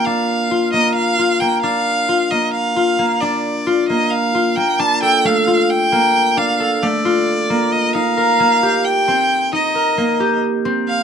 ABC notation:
X:1
M:7/8
L:1/8
Q:1/4=133
K:Bb
V:1 name="Violin"
f3 e f2 g | f3 e f3 | d3 e f2 g | a g f2 g3 |
f2 d4 e | f4 g3 | e4 z2 f |]
V:2 name="Harp"
D2 F B,2 F B, | D2 F B,2 F B, | D2 F B,2 F B, | D A A, F2 B,2 |
D A A, F2 B,2 | E B B, G2 C2 | E B B, G2 C2 |]